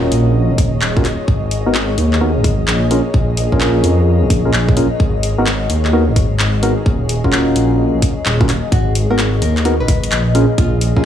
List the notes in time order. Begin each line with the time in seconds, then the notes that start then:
Already playing: C#4 F4 F#4 G#4 A#4 C#5 D#5 F5
0.12 A#1, open hi-hat
0.50 D#1
0.58 kick, open hi-hat
0.81 D#1, clap
0.97 C#4 F4 F#4 A#4, kick
1.05 clap, open hi-hat
1.28 G#1, kick
1.51 open hi-hat
1.66 G#1 B3 D#4 F#4 A#4
1.75 clap
1.98 D#2, open hi-hat
2.13 clap
2.21 B3 D#4 F#4 A#4
2.36 G#1
2.44 kick, open hi-hat
2.67 A#1, clap
2.91 C#4 F4 G#4 A#4, open hi-hat
3.14 A#1, kick
3.37 open hi-hat
3.52 A#1 C#4 F4 G#4 A#4, kick
3.61 clap
3.84 F2, open hi-hat
4.22 A#1
4.30 kick, open hi-hat
4.45 C#4 F4 G#4 A#4
4.53 A#1, clap
4.69 kick
4.77 C#4 F4 G#4 A#4, open hi-hat
5.00 G#1, kick
5.23 open hi-hat
5.38 G#1 B3 D#4 F#4 A#4
5.46 clap
5.70 D#2, open hi-hat
5.85 clap
5.93 B3 D#4 F#4 A#4
6.08 G#1
6.16 kick, open hi-hat
6.39 G#1, clap
6.63 B3 D#4 F#4 A#4, open hi-hat
6.86 D#1, kick
7.09 open hi-hat
7.20 F5
7.24 D#1 C#4 F4 F#4 A#4, kick
7.33 clap
7.56 A#1, open hi-hat
7.94 A#1
8.02 kick, open hi-hat
8.26 D#1, clap
8.41 C#4 F4 F#4 A#4, kick
8.49 clap, open hi-hat
8.72 G#1 F#4 D#5, kick, closed hi-hat
8.95 F#5, open hi-hat
9.10 G#1 B3 D#4 F#4 A#4
9.19 clap, closed hi-hat
9.42 D#2 A#4, open hi-hat
9.57 clap, closed hi-hat
9.65 B3 D#4 F#4 A#4, closed hi-hat
9.80 G#1 B4
9.88 kick, open hi-hat
10.04 closed hi-hat
10.12 A#1, clap, closed hi-hat
10.35 C#4 F4 G#4 A#4, open hi-hat
10.58 A#1 F4, kick, closed hi-hat
10.75 F5
10.81 open hi-hat
10.96 A#1 C#4 F4 G#4 A#4, kick